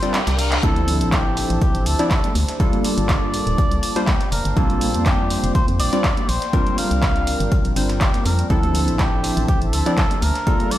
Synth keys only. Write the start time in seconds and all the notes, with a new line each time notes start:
0.02 G3 C4 D4 F4 D5
0.63 F3 C4 D4 E4 A4
1.99 F3 C4 D4 E4 D5
2.60 G3 A#3 D4 F4 A4
3.96 G3 A#3 D4 F4 C5
4.56 G3 A#3 C4 D4 F4
5.93 G3 C4 D4 F4 D5
6.53 G3 C4 D4 F4 A#4
7.76 G3 C4 D4 F4 C5
8.50 F3 C4 D4 E4 A4
9.86 F3 C4 D4 E4 D5
10.47 G3 A#3 D4 F4 A4